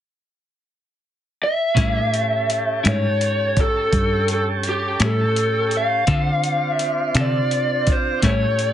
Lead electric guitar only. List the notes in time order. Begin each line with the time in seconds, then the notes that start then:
1.43 E5
2.88 C#5
3.61 A4
4.33 A4
4.69 G4
5.05 A4
5.77 F5
6.71 E5
7.21 D5
7.93 C5
8.27 C#5